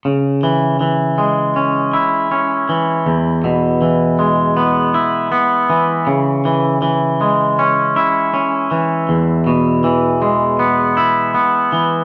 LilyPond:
\new Staff \with { instrumentName = "Clean electric guitar" } { \clef bass \time 4/4 \key cis \minor \tempo 4 = 80 cis8 e8 e8 gis8 cis'8 e'8 cis'8 e8 | e,8 b,8 e8 gis8 b8 e'8 b8 e8 | cis8 e8 e8 gis8 cis'8 e'8 cis'8 e8 | e,8 b,8 e8 gis8 b8 e'8 b8 e8 | }